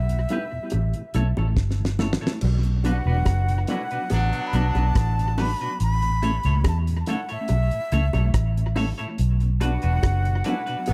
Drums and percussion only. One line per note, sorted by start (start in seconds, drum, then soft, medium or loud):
0.09 closed hi-hat soft
0.29 closed hi-hat medium
0.29 low bongo medium
0.70 closed hi-hat medium
0.70 high bongo medium
0.93 closed hi-hat soft
1.14 closed hi-hat medium
1.14 high bongo medium
1.37 high bongo medium
1.57 kick loud
1.57 snare medium
1.71 snare medium
1.85 snare medium
1.99 snare medium
1.99 high bongo medium
1.99 low bongo medium
2.13 snare medium
2.27 snare medium
2.41 crash loud
2.63 closed hi-hat soft
2.84 closed hi-hat medium
2.84 high bongo medium
3.25 kick loud
3.25 cross-stick loud
3.25 closed hi-hat medium
3.25 high bongo medium
3.49 closed hi-hat medium
3.67 closed hi-hat medium
3.67 low bongo medium
3.91 closed hi-hat soft
4.10 closed hi-hat medium
4.10 high bongo medium
4.33 closed hi-hat soft
4.53 closed hi-hat medium
4.75 closed hi-hat soft
4.75 high bongo medium
4.95 kick loud
4.95 cross-stick loud
4.95 closed hi-hat loud
5.19 closed hi-hat soft
5.38 cross-stick medium
5.38 open hi-hat medium
5.38 high bongo medium
5.38 low bongo medium
5.61 closed hi-hat soft
5.80 closed hi-hat medium
6.02 closed hi-hat soft
6.23 closed hi-hat medium
6.23 high bongo medium
6.43 closed hi-hat soft
6.64 kick loud
6.64 cross-stick loud
6.64 closed hi-hat medium
6.64 high bongo medium
6.87 closed hi-hat medium
7.06 closed hi-hat medium
7.06 low bongo medium
7.29 closed hi-hat soft
7.48 closed hi-hat medium
7.48 high bongo medium
7.71 closed hi-hat soft
7.92 closed hi-hat medium
8.13 closed hi-hat soft
8.13 high bongo medium
8.34 kick loud
8.34 cross-stick loud
8.34 closed hi-hat loud
8.57 closed hi-hat soft
8.76 cross-stick medium
8.76 open hi-hat medium
8.76 high bongo medium
8.76 low bongo medium
8.99 closed hi-hat soft
9.18 closed hi-hat medium
9.40 closed hi-hat soft
9.61 closed hi-hat medium
9.61 high bongo medium
9.82 closed hi-hat soft
10.03 kick loud
10.03 cross-stick loud
10.03 closed hi-hat medium
10.03 high bongo medium
10.25 closed hi-hat soft
10.44 closed hi-hat medium
10.44 low bongo medium
10.67 closed hi-hat soft
10.86 closed hi-hat medium
10.86 high bongo medium